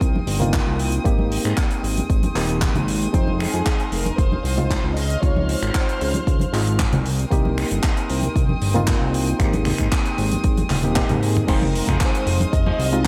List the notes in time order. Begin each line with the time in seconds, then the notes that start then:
Already playing: A#3 C4 D#4 G4 A#4 G5 C6 D#6
0.01 C2, kick, closed hi-hat
0.16 high conga
0.27 G1, open hi-hat
0.40 A#3 C4 D#4 F4, closed hi-hat, low conga
0.53 kick, clap, closed hi-hat
0.67 C2
0.79 open hi-hat
0.92 closed hi-hat
1.04 G#1 G#3 A#3 C4 D#4 G4 C6, kick, closed hi-hat
1.19 high conga
1.32 open hi-hat
1.45 G#2, finger snap, closed hi-hat
1.57 kick, clap, closed hi-hat
1.71 closed hi-hat
1.83 G#1, open hi-hat
1.97 closed hi-hat, high conga
2.10 G#1, kick, closed hi-hat
2.23 closed hi-hat, high conga
2.35 D#1 A#3 C4 D#4 G4, clap, open hi-hat
2.49 closed hi-hat
2.62 kick, clap, closed hi-hat
2.74 G#1, closed hi-hat, high conga, low conga
2.88 open hi-hat
3.02 closed hi-hat
3.13 F1 G#3 C4 D#4 C5 F5 G5, kick, closed hi-hat
3.27 high conga
3.40 G#4, finger snap, open hi-hat
3.54 F2, closed hi-hat
3.66 kick, clap, closed hi-hat
3.80 closed hi-hat
3.92 F1 A#4, open hi-hat
4.05 closed hi-hat, high conga
4.18 F1 C5, kick, closed hi-hat
4.32 high conga
4.43 C2 C5, open hi-hat
4.57 G#3 C4 D#4 F4, closed hi-hat, low conga
4.71 kick, clap, closed hi-hat
4.84 C#2
4.96 D#5 F6, open hi-hat
5.10 closed hi-hat
5.22 C#2 G#3 C4 D#4 F4 C#5, kick, closed hi-hat
5.37 high conga
5.48 C5, open hi-hat
5.63 G#1, finger snap, closed hi-hat
5.75 kick, clap, closed hi-hat
5.89 closed hi-hat
6.01 C#2, open hi-hat
6.14 closed hi-hat, high conga
6.27 C#2, kick, closed hi-hat
6.40 closed hi-hat, high conga
6.53 G#1 G#3 C4 D#4 F4, clap, open hi-hat
6.67 closed hi-hat
6.79 kick, clap, closed hi-hat
6.93 C2, closed hi-hat, high conga, low conga
7.05 A#4 G5 C6 D#6, open hi-hat
7.19 closed hi-hat
7.31 C2 A#3 C4 D#4 G4, kick, closed hi-hat
7.45 high conga
7.58 finger snap, open hi-hat
7.71 G1, closed hi-hat
7.83 kick, clap, closed hi-hat
7.97 closed hi-hat
8.10 C2, open hi-hat
8.22 closed hi-hat, high conga
8.36 C2, kick, closed hi-hat
8.49 high conga
8.62 G1, open hi-hat
8.74 A#3 C4 D#4 F4, closed hi-hat, low conga
8.87 kick, clap, closed hi-hat
9.01 C2
9.14 open hi-hat
9.27 closed hi-hat
9.39 G#1 G#3 A#3 C4 D#4 G4 D#6, finger snap, kick, closed hi-hat
9.53 closed hi-hat, high conga
9.65 finger snap, open hi-hat, low conga
9.78 G#2, finger snap, kick, closed hi-hat
9.92 kick, clap, closed hi-hat
10.06 closed hi-hat
10.18 G#1, open hi-hat
10.32 closed hi-hat, high conga
10.44 G#1, kick, closed hi-hat
10.57 closed hi-hat, high conga
10.70 D#1, clap, open hi-hat, high tom, low conga
10.83 A#3 C4 D#4 G4, closed hi-hat, high tom
10.96 A#3 C4 D#4 G4, kick, clap, closed hi-hat, mid tom
11.09 G#2, closed hi-hat, mid tom, high conga, low conga
11.22 G#4, open hi-hat
11.36 closed hi-hat, mid tom
11.47 F1 G#3 C4 D#4 F4 G#4 A#4 C5 F5 G5 C6 D#6, finger snap, kick, closed hi-hat, crash
11.62 high conga, low conga
11.75 muted clean electric guitar stroke, open hi-hat
11.88 F2 D#4 F4 G#4 C5, finger snap, kick, closed hi-hat, low conga
12.00 C5, kick, clap, closed hi-hat
12.15 closed hi-hat
12.27 F1, open hi-hat
12.40 closed hi-hat, high conga
12.53 F1 D#5, muted clean electric guitar stroke, kick, closed hi-hat
12.66 D#4 F4 G#4 C5, high conga
12.79 C2, open hi-hat
12.92 G#3 C4 D#4 F4, closed hi-hat